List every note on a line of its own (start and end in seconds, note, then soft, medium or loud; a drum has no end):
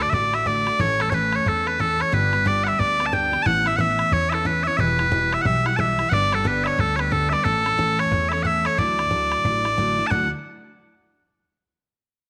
0.00 0.12 D3 medium
0.00 0.13 A3 medium
0.00 0.13 D4 medium
0.00 0.14 F#4 medium
0.00 0.10 D5 medium
0.07 0.14 E5 medium
0.07 bodhran soft
0.12 0.68 A1 loud
0.12 0.33 D3 medium
0.12 0.34 A3 medium
0.12 0.33 D4 medium
0.12 0.32 F#4 medium
0.12 0.35 D5 medium
0.12 bodhran medium
0.33 0.46 A3 soft
0.33 0.46 D4 medium
0.33 0.46 F#4 medium
0.33 0.47 E5 medium
0.33 bodhran medium
0.46 0.67 D3 medium
0.46 0.67 A3 medium
0.46 0.66 D4 medium
0.46 0.65 F#4 medium
0.46 0.80 D5 loud
0.46 bodhran medium
0.67 0.78 A3 soft
0.67 0.80 D4 medium
0.67 0.79 F#4 medium
0.67 bodhran medium
0.79 1.35 A1 loud
0.79 1.00 A2 medium
0.79 1.00 E3 medium
0.79 1.00 A3 medium
0.79 0.99 C#4 medium
0.79 0.98 A4 medium
0.79 1.01 C#5 loud
0.79 bodhran medium
0.99 1.11 A3 soft
0.99 1.12 C#4 soft
0.99 1.12 A4 soft
0.99 1.10 A4 medium
0.99 bodhran medium
1.06 bodhran soft
1.10 1.46 A2 medium
1.10 1.44 E3 medium
1.10 1.45 A3 medium
1.10 1.45 C#4 loud
1.10 1.46 A4 medium
1.10 1.14 C#5 medium
1.10 bodhran loud
1.14 1.35 B4 medium
1.32 1.48 C#5 medium
1.32 bodhran medium
1.39 bodhran soft
1.45 2.01 E2 loud
1.45 1.66 E3 medium
1.45 1.66 A3 medium
1.45 1.66 C#4 medium
1.45 1.65 A4 medium
1.45 1.67 A4 medium
1.45 bodhran medium
1.66 1.78 A3 soft
1.66 1.78 C#4 medium
1.66 1.78 A4 medium
1.66 1.80 B4 medium
1.66 bodhran medium
1.78 1.99 A2 medium
1.78 1.99 E3 medium
1.78 1.99 A3 medium
1.78 1.98 C#4 medium
1.78 1.97 A4 medium
1.78 2.01 A4 loud
1.78 bodhran medium
1.98 2.12 A3 soft
1.98 2.12 C#4 medium
1.98 2.12 A4 medium
1.98 2.14 C#5 medium
1.98 bodhran medium
2.12 2.67 G1 loud
2.12 2.33 G2 medium
2.12 2.33 D3 medium
2.12 2.32 G3 medium
2.12 2.32 B3 medium
2.12 2.31 D4 medium
2.12 2.31 G4 loud
2.12 2.47 B4 loud
2.12 bodhran medium
2.32 2.44 G3 soft
2.32 2.44 B3 soft
2.32 2.45 D4 medium
2.32 2.45 G4 soft
2.32 bodhran medium
2.39 bodhran soft
2.45 2.79 G2 medium
2.45 2.78 D3 medium
2.45 2.77 G3 medium
2.45 2.78 B3 medium
2.45 2.78 D4 loud
2.45 2.78 G4 loud
2.45 2.64 D5 loud
2.45 bodhran medium
2.64 2.68 F#5 loud
2.64 bodhran medium
2.68 2.79 E5 loud
2.73 bodhran soft
2.78 3.34 D2 medium
2.78 2.99 G3 medium
2.78 2.98 B3 medium
2.78 2.98 D4 medium
2.78 2.97 G4 medium
2.78 3.06 D5 loud
2.78 bodhran medium
2.98 3.11 G3 medium
2.98 3.11 B3 medium
2.98 3.11 D4 medium
2.98 3.12 G4 medium
2.98 bodhran medium
3.06 3.14 A5 medium
3.12 3.32 G2 medium
3.12 3.33 D3 medium
3.12 3.32 G3 medium
3.12 3.31 B3 medium
3.12 3.31 D4 medium
3.12 3.30 G4 medium
3.12 3.43 G5 loud
3.12 bodhran medium
3.32 3.45 G3 soft
3.32 3.45 B3 medium
3.32 3.45 D4 medium
3.32 3.45 G4 medium
3.32 bodhran medium
3.43 4.01 A1 loud
3.43 3.66 A2 medium
3.43 3.66 E3 medium
3.43 3.65 B3 medium
3.43 3.64 C#4 medium
3.43 3.63 E4 medium
3.43 3.67 F#5 loud
3.43 3.46 A5 loud
3.43 bodhran medium
3.65 3.78 B3 soft
3.65 3.78 C#4 soft
3.65 3.78 E4 medium
3.65 3.77 E5 loud
3.65 bodhran medium
3.72 bodhran soft
3.77 4.12 A2 medium
3.77 4.10 E3 medium
3.77 4.11 B3 medium
3.77 4.11 C#4 medium
3.77 4.12 E4 loud
3.77 4.13 E5 loud
3.77 3.80 F#5 loud
3.77 bodhran medium
3.99 bodhran medium
4.11 4.67 E2 loud
4.11 4.32 E3 medium
4.11 4.32 B3 medium
4.11 4.31 C#4 medium
4.11 4.30 E4 medium
4.11 4.30 C#5 loud
4.11 bodhran medium
4.30 4.44 B3 soft
4.30 4.44 C#4 soft
4.30 4.45 E4 medium
4.30 4.34 E5 medium
4.30 bodhran medium
4.34 4.46 A4 medium
4.45 4.65 A2 medium
4.45 4.66 E3 medium
4.45 4.65 B3 medium
4.45 4.65 C#4 medium
4.45 4.64 E4 medium
4.45 4.63 B4 medium
4.45 bodhran loud
4.63 4.78 B3 soft
4.63 4.79 C#4 medium
4.63 4.78 E4 medium
4.63 4.77 C#5 medium
4.63 4.67 E5 medium
4.77 5.34 E1 medium
4.77 4.99 E2 medium
4.77 4.99 B2 medium
4.77 4.99 E3 medium
4.77 4.98 G3 medium
4.77 4.98 E4 medium
4.77 4.97 G4 medium
4.77 5.34 B4 loud
4.77 4.80 E5 loud
4.77 bodhran medium
4.98 5.10 E3 soft
4.98 5.11 G3 soft
4.98 5.11 E4 soft
4.98 5.11 G4 medium
4.98 bodhran medium
5.05 bodhran soft
5.11 5.45 E2 medium
5.11 5.45 B2 medium
5.11 5.42 E3 medium
5.11 5.44 G3 medium
5.11 5.44 E4 medium
5.11 5.45 G4 medium
5.11 bodhran loud
5.33 5.42 E5 medium
5.33 bodhran medium
5.42 6.00 B1 medium
5.42 5.65 E3 medium
5.42 5.65 G3 medium
5.42 5.64 E4 medium
5.42 5.46 F#5 loud
5.42 bodhran medium
5.46 5.64 G4 medium
5.46 5.66 E5 loud
5.65 5.77 E3 soft
5.65 5.77 G3 medium
5.65 5.77 E4 medium
5.65 5.78 G4 medium
5.65 5.76 F#5 medium
5.65 bodhran medium
5.76 5.98 E2 medium
5.76 5.99 B2 medium
5.76 5.99 E3 medium
5.76 5.98 G3 medium
5.76 5.97 E4 medium
5.76 5.97 G4 medium
5.76 6.09 E5 loud
5.76 5.80 A5 loud
5.76 bodhran loud
5.98 6.11 E3 medium
5.98 6.10 G3 medium
5.98 6.12 E4 medium
5.98 6.11 G4 medium
5.98 bodhran medium
6.09 6.67 G1 loud
6.09 6.32 G2 medium
6.09 6.32 D3 medium
6.09 6.32 G3 medium
6.09 6.32 B3 medium
6.09 6.31 D4 medium
6.09 6.30 G4 medium
6.09 6.34 D5 loud
6.09 6.13 F#5 loud
6.09 bodhran loud
6.31 6.43 G3 soft
6.31 6.43 B3 soft
6.31 6.43 D4 soft
6.31 6.44 G4 medium
6.31 6.47 A4 medium
6.31 bodhran medium
6.39 bodhran soft
6.44 6.78 G2 medium
6.44 6.78 D3 medium
6.44 6.76 G3 medium
6.44 6.76 B3 loud
6.44 6.77 D4 medium
6.44 6.78 G4 medium
6.44 6.64 B4 loud
6.44 bodhran loud
6.64 6.80 C#5 medium
6.64 6.67 E5 medium
6.64 bodhran medium
6.73 bodhran soft
6.77 7.33 D2 loud
6.77 6.98 G3 medium
6.77 6.98 B3 medium
6.77 6.97 D4 medium
6.77 6.96 G4 medium
6.77 6.96 A4 loud
6.77 bodhran medium
6.96 7.10 G3 soft
6.96 7.10 B3 soft
6.96 7.11 D4 soft
6.96 7.11 G4 medium
6.96 7.00 C#5 medium
6.96 bodhran medium
7.00 7.12 B4 medium
7.10 7.31 G2 medium
7.10 7.32 D3 medium
7.10 7.32 G3 medium
7.10 7.31 B3 medium
7.10 7.31 D4 medium
7.10 7.30 G4 medium
7.10 7.29 A4 medium
7.10 bodhran medium
7.29 7.44 G3 soft
7.29 7.44 B3 medium
7.29 7.45 D4 medium
7.29 7.44 G4 medium
7.29 7.44 D5 medium
7.29 7.33 E5 medium
7.29 bodhran medium
7.44 8.00 A1 loud
7.44 7.65 A2 medium
7.44 7.65 E3 medium
7.44 7.65 A3 medium
7.44 7.64 C#4 loud
7.44 8.00 A4 loud
7.44 7.63 A4 medium
7.44 bodhran medium
7.64 7.76 A3 soft
7.64 7.77 C#4 medium
7.64 7.77 A4 medium
7.64 bodhran medium
7.73 bodhran soft
7.77 8.11 A2 medium
7.77 8.11 E3 medium
7.77 8.12 A3 loud
7.77 8.11 C#4 loud
7.77 8.13 A4 loud
7.77 bodhran medium
7.99 8.29 C#5 medium
7.99 bodhran medium
8.06 bodhran soft
8.11 8.66 E2 loud
8.11 8.32 E3 medium
8.11 8.32 A3 medium
8.11 8.31 C#4 medium
8.11 8.30 A4 medium
8.11 bodhran medium
8.29 8.44 C#4 medium
8.29 8.44 A4 medium
8.29 8.33 E5 medium
8.29 bodhran medium
8.33 8.44 A3 soft
8.33 8.43 C#5 medium
8.43 8.65 A2 medium
8.43 8.65 E3 medium
8.43 8.65 A3 medium
8.43 8.65 C#4 medium
8.43 8.64 A4 medium
8.43 8.66 E5 loud
8.43 8.46 F#5 loud
8.43 bodhran medium
8.65 8.77 A3 soft
8.65 8.78 C#4 medium
8.65 8.78 A4 medium
8.65 8.78 C#5 medium
8.65 bodhran medium
8.78 9.33 D2 loud
8.78 8.98 D3 medium
8.78 8.99 F#3 medium
8.78 8.99 A3 medium
8.78 8.98 D4 medium
8.78 8.97 E4 medium
8.78 10.07 D5 loud
8.78 bodhran medium
8.98 9.10 A3 soft
8.98 9.10 D4 soft
8.98 9.11 E4 medium
8.98 bodhran medium
9.05 bodhran soft
9.10 9.48 D3 medium
9.10 9.43 F#3 medium
9.10 9.44 A3 medium
9.10 9.44 D4 medium
9.10 9.45 E4 medium
9.10 bodhran medium
9.32 bodhran medium
9.38 bodhran soft
9.44 10.00 A1 medium
9.44 9.65 F#3 medium
9.44 9.64 A3 medium
9.44 9.64 D4 medium
9.44 9.63 E4 medium
9.44 bodhran medium
9.64 9.77 A3 soft
9.64 9.77 D4 medium
9.64 9.77 E4 medium
9.64 bodhran medium
9.77 9.98 D3 medium
9.77 9.98 F#3 medium
9.77 9.98 A3 medium
9.77 9.97 D4 loud
9.77 9.96 E4 medium
9.77 bodhran medium
9.98 10.09 A3 medium
9.98 10.10 D4 medium
9.98 10.11 E4 medium
10.07 10.26 D3 medium
10.07 10.27 F#3 medium
10.07 10.27 A3 medium
10.07 10.30 F#5 medium
10.07 10.11 A5 medium
10.11 10.30 D2 loud
10.11 10.28 D4 loud
10.11 10.28 E4 medium
10.11 bodhran medium